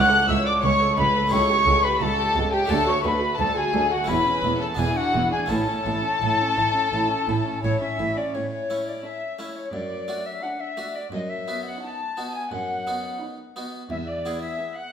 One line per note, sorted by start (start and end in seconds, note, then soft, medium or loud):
0.00 0.25 C#2 medium
0.00 1.26 A3 medium
0.00 1.26 E4 medium
0.00 1.27 A4 medium
0.00 0.11 C#5 medium
0.00 0.29 F#5 loud
0.00 0.28 F#6 loud
0.00 0.29 F#6 loud
0.12 0.29 A4 medium
0.29 0.60 C#2 medium
0.29 0.37 C#2 medium
0.29 0.46 C#5 medium
0.29 0.46 E5 medium
0.29 0.46 E6 medium
0.29 0.46 E6 loud
0.46 0.64 A4 medium
0.46 0.53 D5 loud
0.46 0.63 D6 loud
0.46 0.53 D6 loud
0.62 0.71 C#2 medium
0.62 0.94 C#2 medium
0.62 0.96 C#5 loud
0.62 0.80 C#5 medium
0.62 0.96 C#6 loud
0.62 0.97 C#6 loud
0.81 0.98 A4 medium
0.97 1.05 C#2 medium
0.97 1.06 C#2 medium
0.97 1.28 C#2 medium
0.97 1.31 B4 loud
0.97 1.15 C#5 medium
0.97 1.31 B5 loud
0.97 1.34 B5 loud
1.16 1.31 A4 medium
1.27 1.39 C#2 medium
1.27 2.64 A3 medium
1.27 2.65 E4 medium
1.27 2.65 G4 medium
1.27 1.82 C#6 loud
1.32 1.40 C#2 medium
1.32 1.63 C#2 medium
1.32 1.48 A4 medium
1.32 1.83 C#5 loud
1.32 1.86 C#6 loud
1.49 1.66 G4 medium
1.66 1.74 C#2 medium
1.66 1.98 C#2 medium
1.66 1.84 A4 medium
1.84 2.01 G4 medium
1.84 2.01 B4 loud
1.84 2.04 B5 loud
1.84 2.01 B5 loud
2.00 2.08 C#2 medium
2.00 2.09 C#2 medium
2.00 2.32 C#2 medium
2.00 2.52 A4 loud
2.00 2.17 A4 medium
2.00 2.53 A5 loud
2.19 2.36 G4 medium
2.35 2.43 C#2 medium
2.35 2.67 C#2 medium
2.35 2.44 C#2 medium
2.35 2.53 A4 medium
2.52 2.69 G4 loud
2.52 2.70 G4 medium
2.52 2.70 G5 loud
2.52 2.72 G5 medium
2.65 4.02 A3 medium
2.65 4.03 D4 medium
2.65 4.04 F#4 medium
2.70 2.78 D2 medium
2.70 3.01 D2 medium
2.70 2.78 D2 medium
2.70 2.86 A4 medium
2.70 2.87 A4 loud
2.70 2.87 A5 loud
2.87 3.05 F#4 medium
2.87 3.05 C#5 loud
2.87 3.04 C#6 loud
2.87 3.05 C#6 loud
3.04 3.12 D2 medium
3.04 3.36 D2 medium
3.04 3.13 D2 medium
3.04 3.22 A4 medium
3.04 3.38 B4 medium
3.04 3.39 B5 loud
3.04 3.39 B5 medium
3.21 3.39 F#4 medium
3.38 3.70 D2 medium
3.38 3.47 D2 medium
3.38 3.55 A4 medium
3.38 3.57 A4 medium
3.38 3.56 A5 loud
3.38 3.55 A5 loud
3.55 3.74 F#4 medium
3.55 3.92 G#4 medium
3.55 3.91 G#5 loud
3.55 3.90 G#5 loud
3.73 4.05 D2 medium
3.73 3.82 D2 medium
3.73 3.91 A4 medium
3.91 4.09 F#4 medium
3.91 4.10 F#5 medium
3.91 4.09 F#5 loud
4.04 4.74 A3 medium
4.04 4.75 C#4 medium
4.04 4.76 E4 medium
4.04 4.60 B5 loud
4.04 4.37 B5 loud
4.08 4.17 E1 medium
4.08 4.16 E2 medium
4.08 4.40 E2 medium
4.08 4.25 E4 medium
4.08 4.61 B4 loud
4.26 4.44 C#4 medium
4.43 4.51 E1 medium
4.43 4.52 E2 medium
4.43 4.75 E2 medium
4.43 4.61 E4 medium
4.60 4.78 C#4 medium
4.60 4.79 A4 medium
4.60 4.80 A5 medium
4.60 4.79 A5 medium
4.75 4.86 E1 medium
4.75 5.46 B3 medium
4.75 5.47 D4 medium
4.75 5.47 E4 medium
4.75 4.95 E4 medium
4.75 4.96 G#5 loud
4.75 4.98 G#5 medium
4.79 4.87 E2 medium
4.79 5.11 E2 medium
4.79 4.96 G#4 medium
4.95 5.14 D4 medium
4.95 5.31 F#4 medium
4.95 5.30 F#5 loud
4.95 5.31 F#5 medium
5.13 5.22 E1 medium
5.13 5.47 E2 medium
5.13 5.23 E2 medium
5.13 5.32 E4 medium
5.31 5.50 D4 medium
5.31 5.49 G#4 medium
5.31 5.51 G#5 medium
5.31 5.40 G#5 medium
5.46 5.58 A1 medium
5.46 8.29 A3 medium
5.46 8.30 C#4 medium
5.46 8.31 E4 medium
5.46 5.67 E4 medium
5.46 7.63 A4 loud
5.46 7.63 A5 loud
5.46 7.95 A5 loud
5.51 5.83 A2 medium
5.51 5.59 A2 medium
5.68 5.86 C#4 medium
5.86 5.94 A1 medium
5.86 6.18 A2 medium
5.86 5.94 A2 medium
5.86 6.04 E4 medium
6.03 6.21 C#4 medium
6.21 6.29 A1 medium
6.21 6.54 A2 medium
6.21 6.30 A2 medium
6.21 6.38 E4 medium
6.40 6.58 C#4 medium
6.57 6.65 A1 medium
6.57 6.65 A2 medium
6.57 6.89 A2 medium
6.57 6.75 E4 medium
6.75 6.93 C#4 medium
6.92 7.01 A1 medium
6.92 7.01 A2 medium
6.92 7.25 A2 medium
6.92 7.09 E4 medium
7.09 7.28 C#4 medium
7.27 7.37 A1 medium
7.27 7.36 A2 medium
7.27 7.61 A2 medium
7.27 7.46 E4 medium
7.45 7.63 C#4 medium
7.63 7.72 A1 medium
7.63 7.72 A2 medium
7.63 7.96 A2 medium
7.63 7.80 E4 medium
7.63 7.80 C#5 medium
7.81 7.99 C#4 medium
7.81 8.16 E5 medium
7.81 8.19 E5 medium
7.99 8.07 A1 medium
7.99 8.31 A2 medium
7.99 8.07 A2 medium
7.99 8.17 E4 medium
8.17 8.35 C#4 medium
8.17 8.35 D5 medium
8.17 8.36 D5 medium
8.35 8.90 A2 medium
8.35 8.90 A2 soft
8.35 8.51 C#5 medium
8.35 8.42 C#5 soft
8.51 8.86 C#5 medium
8.51 8.86 C#5 soft
8.70 9.20 A3 soft
8.70 9.20 C#4 soft
8.70 9.20 E4 soft
8.86 9.04 D5 soft
8.86 8.94 D5 medium
9.03 9.56 C#4 soft
9.03 9.56 A4 soft
9.03 9.33 E5 medium
9.03 9.56 E5 soft
9.39 9.64 A3 soft
9.39 9.64 C#4 soft
9.39 9.65 E4 soft
9.56 9.73 C#5 soft
9.56 9.72 C#5 medium
9.73 10.28 F#2 soft
9.73 10.29 F#2 medium
9.73 10.28 D5 medium
9.73 10.25 D5 soft
10.08 10.58 A3 soft
10.08 10.58 D4 soft
10.08 10.59 F#4 soft
10.25 10.32 E5 soft
10.25 10.44 E5 medium
10.41 10.95 D4 soft
10.41 10.94 A4 soft
10.41 10.50 F#5 medium
10.41 10.62 F#5 medium
10.60 10.98 E5 medium
10.60 10.95 E5 soft
10.77 11.03 A3 soft
10.77 11.03 D4 soft
10.77 11.03 F#4 soft
10.95 11.12 D5 soft
10.95 11.11 D5 medium
11.12 11.68 F#2 soft
11.12 11.69 F#2 medium
11.12 11.31 D#5 medium
11.12 11.20 D#5 medium
11.29 11.65 E5 medium
11.29 11.65 E5 soft
11.48 11.98 B3 soft
11.48 11.98 D#4 soft
11.48 11.99 F#4 soft
11.65 11.83 F#5 soft
11.65 11.82 F#5 medium
11.82 12.34 D#4 soft
11.82 12.34 B4 soft
11.82 12.34 A5 medium
11.82 12.35 A5 medium
12.17 12.42 B3 soft
12.17 12.42 D#4 soft
12.17 12.43 F#4 soft
12.35 12.51 G#5 medium
12.35 12.53 G#5 soft
12.52 13.07 F#2 soft
12.52 13.07 F#2 medium
12.52 13.20 F#5 medium
12.52 13.21 F#5 medium
12.87 13.37 B3 soft
12.87 13.37 D#4 soft
12.87 13.37 F#4 soft
13.20 13.72 D#4 soft
13.20 13.72 B4 soft
13.56 13.81 B3 soft
13.56 13.81 D#4 soft
13.56 13.82 F#4 soft
13.90 14.45 E2 soft
13.90 14.45 E2 medium
13.90 14.06 E5 medium
13.90 13.97 E5 medium
14.07 14.41 D5 medium
14.07 14.42 D5 soft
14.25 14.75 B3 soft
14.25 14.75 E4 soft
14.25 14.76 G#4 soft
14.42 14.78 E5 medium
14.42 14.76 E5 medium
14.59 14.92 B3 medium
14.59 14.92 G#4 soft
14.76 14.92 F#5 medium